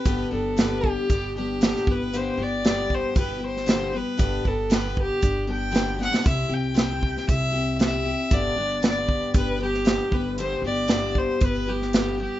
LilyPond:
<<
  \new Staff \with { instrumentName = "Fiddle" } { \time 4/4 \key g \major \tempo 4 = 116 b'8 a'8 b'8 g'4 g'4 b'8 | c''8 d''4 c''8 b'8 c''4 b'8~ | b'8 a'8 b'8 g'4 g''4 fis''8 | e''8 g''4. e''4 e''4 |
d''4 d''4 b'8 g'4 b'8 | c''8 d''4 c''8 b'8 g'4 g'8 | }
  \new Staff \with { instrumentName = "Steel-string acoustic guitar" } { \time 4/4 \key g \major <g, d g b d' g'>8 <g b d' g'>8 <g, d g b d' g'>4 <g b d' g'>8 <g b d' g'>8 <g, d g b d' g'>8 <g b e' g'>8 | <g, d g b e' g'>8 <g b e' g'>8 <g, d g b e' g'>4 <g b e' g'>8 <g b e' g'>8 <g, d g b e' g'>8 <g b e' g'>8 | <g, d g b d' g'>8 <g b d' g'>8 <g, d g b d' g'>4 <g b d' g'>8 <g b d' g'>8 <g, d g b d' g'>8 <g b d' g'>8 | <c g c' e' g'>8 <c' e' g'>8 <c g c' e' g'>4 <g c' e' g'>8 <c' e' g'>8 <c g c' e' g'>8 <c' e' g'>8 |
<g, d g b d' g'>8 <g b d' g'>8 <g, d g b d' g'>4 <g b d' g'>8 <g b d' g'>8 <g, d g b d' g'>8 <g b e' g'>8 | <g, d g b e' g'>8 <g b e' g'>8 <g, d g b e' g'>4 <g b e' g'>8 <g b e' g'>8 <g, d g b e' g'>8 <g b e' g'>8 | }
  \new Staff \with { instrumentName = "Upright bass" } { \clef bass \time 4/4 \key g \major g,,8 g,,4. g,,4. g,,8~ | g,,8 g,,4. g,,2 | g,,8 g,,4. g,,2 | c,8 c,4. c,2 |
g,,8 g,,4. g,,4. g,,8~ | g,,8 g,,4. g,,2 | }
  \new DrumStaff \with { instrumentName = "Drums" } \drummode { \time 4/4 <hh bd>4 <hh sn>8 bd8 <hh bd>4 <hh sn>16 sn16 bd8 | hh4 <hh sn>8 bd8 <hh bd>8. sn16 <hh sn>4 | <hh bd>8 bd8 <hh sn>8 bd8 <hh bd>4 <hh sn>8 sn16 sn16 | <hh bd>4 <hh sn>8 bd16 sn16 <hh bd>4 <hh sn>4 |
<hh bd>4 <hh sn>8 bd8 <hh bd>8. sn16 <hh sn>8 bd8 | hh4 <hh sn>8 bd8 <hh bd>8. sn16 <hh sn>4 | }
>>